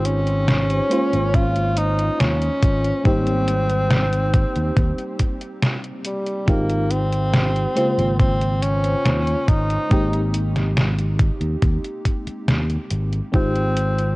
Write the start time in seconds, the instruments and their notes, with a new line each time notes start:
Already playing: fingered electric bass G#1, fm electric piano G#3 D#4 F4 G4 C5
0.05 tenor saxophone C#4, closed hi-hat
0.27 closed hi-hat
0.48 snare, closed hi-hat
0.70 closed hi-hat
0.89 fm electric piano G#3 A#3 C#4 F4 C5, closed hi-hat
1.13 fingered electric bass G#1, closed hi-hat
1.34 tenor saxophone F4, kick, closed hi-hat
1.56 closed hi-hat
1.77 tenor saxophone D#4, closed hi-hat
1.99 closed hi-hat
2.20 fingered electric bass D#2, tenor saxophone C#4, snare, closed hi-hat
2.41 closed hi-hat
2.62 fingered electric bass G#1, kick, closed hi-hat
2.84 closed hi-hat
3.04 fingered electric bass G#1, fm electric piano G3 A#3 C4 D#4 G4, tenor saxophone C4, kick, closed hi-hat
3.27 closed hi-hat
3.48 closed hi-hat
3.70 closed hi-hat
3.91 snare, closed hi-hat
4.13 closed hi-hat
4.34 kick, closed hi-hat
4.56 fingered electric bass D#2, closed hi-hat
4.77 fingered electric bass D#2, kick, closed hi-hat
4.98 closed hi-hat
5.19 kick, closed hi-hat
5.41 closed hi-hat
5.62 snare, closed hi-hat
5.84 closed hi-hat
6.05 tenor saxophone G3, closed hi-hat
6.27 closed hi-hat
6.46 fingered electric bass G#1, fm electric piano G#3 C4 D#4 F4 G4, tenor saxophone A#3, kick, closed hi-hat
6.70 closed hi-hat
6.91 tenor saxophone C4, closed hi-hat
7.13 closed hi-hat
7.34 snare, closed hi-hat
7.56 closed hi-hat
7.75 fm electric piano C#3 G#3 A#3 F4 C5, closed hi-hat
7.98 fingered electric bass G#1, closed hi-hat
8.19 tenor saxophone C4, kick, closed hi-hat
8.41 closed hi-hat
8.62 tenor saxophone C#4, closed hi-hat
8.84 closed hi-hat
9.05 fingered electric bass D#2, snare, closed hi-hat
9.27 closed hi-hat
9.48 fingered electric bass G#1, tenor saxophone D#4, kick, closed hi-hat
9.70 closed hi-hat
9.89 fingered electric bass G#1, fm electric piano G#3 A#3 C4 D#4 G4, kick, closed hi-hat
10.13 closed hi-hat
10.34 closed hi-hat
10.56 snare, closed hi-hat
10.77 snare, closed hi-hat
10.99 closed hi-hat
11.19 kick, closed hi-hat
11.41 fingered electric bass D#2, closed hi-hat
11.62 fingered electric bass D#2, kick, closed hi-hat
11.84 closed hi-hat
12.05 kick, closed hi-hat
12.27 muted fingered electric bass stroke, closed hi-hat
12.48 fingered electric bass D#2, snare, closed hi-hat
12.70 closed hi-hat
12.91 fingered electric bass G#1, closed hi-hat
13.13 closed hi-hat
13.32 fingered electric bass G#1, fm electric piano G#3 C4 D#4 F4 G4, tenor saxophone C4, kick, closed hi-hat
13.55 closed hi-hat
13.77 closed hi-hat
13.98 closed hi-hat